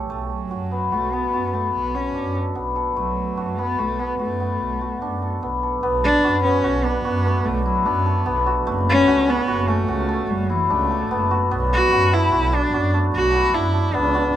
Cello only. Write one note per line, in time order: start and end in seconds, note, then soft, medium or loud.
0.32 0.95 F#3 medium
0.94 1.15 A3 medium
1.13 1.55 B3 medium
1.53 1.73 A3 medium
1.74 1.97 B3 medium
1.95 2.36 C#4 medium
2.96 3.60 F#3 medium
3.59 3.80 B3 medium
3.79 4.01 A3 medium
4.00 4.20 B3 medium
4.21 5.39 A3 medium
6.04 6.42 D4 loud
6.44 6.86 C#4 loud
6.85 7.47 B3 medium
7.46 7.65 A3 medium
7.66 7.89 F#3 medium
7.87 8.48 B3 medium
8.90 9.31 C#4 loud
9.30 9.71 B3 loud
9.69 10.32 A3 medium
10.31 10.53 G3 medium
10.51 10.73 E3 medium
10.72 11.32 A3 medium
11.74 12.15 F#4 loud
12.13 12.56 E4 loud
12.55 12.94 D4 loud
13.16 13.56 F#4 loud
13.55 13.96 E4 medium
13.95 14.35 D4 loud